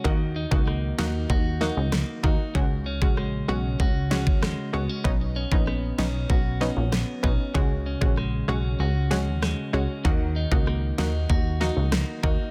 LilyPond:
<<
  \new Staff \with { instrumentName = "Clean electric guitar" } { \time 4/4 \key ees \minor \tempo 4 = 96 ees8 ees'8 bes4 ges'8 ees'8 bes8 ees'8 | des8 des'8 aes8 des'8 ges'8 des'8 aes8 ces'16 des'16 | r8 cis'8 b8 cis'8 fis'8 cis'8 b8 cis'8 | des8 des'8 aes8 des'8 ges'8 des'8 aes8 des'8 |
ees8 ees'8 bes8 ees'8 ges'8 ees'8 bes8 ees'8 | }
  \new Staff \with { instrumentName = "Synth pluck" } { \time 4/4 \key ees \minor <bes ees' ges'>8. <bes ees' ges'>8. <bes ees' ges'>8 r8 <bes ees' ges'>16 r8. <bes ees' ges'>16 r16 | <aes des' ges'>8. <aes des' ges'>8. <aes des' ges'>8 r8 <aes des' ges'>16 r8. <aes des' ges'>16 r16 | <b cis' dis'>8. <b cis' dis'>8. <b cis' dis'>8 r8 <b cis' dis'>16 r8. <b cis' dis'>16 r16 | <aes des' ges'>8. <aes des' ges'>8. <aes des' ges'>8 r8 <aes des' ges'>16 r8. <aes des' ges'>16 r16 |
<bes ees' ges'>8. <bes ees' ges'>8. <bes ees' ges'>8 r8 <bes ees' ges'>16 r8. <bes ees' ges'>16 r16 | }
  \new Staff \with { instrumentName = "Analog synth bass" } { \clef bass \time 4/4 \key ees \minor ees,8. des,8. ees,8 ees,8. des,8 r16 ees,16 r16 | des,8. bes,,8. ces,8 des,8. ees,8 r16 des,16 r16 | b,,8. bes,,8. b,,8 b,,8. bes,,8 r16 b,,16 r16 | des,8. bes,,8. ces,8 des,8. ees,8 r16 des,16 r16 |
ees,8. des,8. ees,8 ees,8. des,8 r16 ees,16 r16 | }
  \new DrumStaff \with { instrumentName = "Drums" } \drummode { \time 4/4 bd8. bd16 ss8 sn8 bd8 sn8 <ss sn>8 bd8 | bd8. bd16 ss4 bd8 sn16 bd16 <ss sn>4 | bd8. bd16 ss8 sn8 bd8 sn8 <ss sn>8 bd8 | bd8. bd16 ss4 r8 sn8 <ss sn>4 |
bd8. bd16 ss8 sn8 bd8 sn8 <ss sn>8 bd8 | }
>>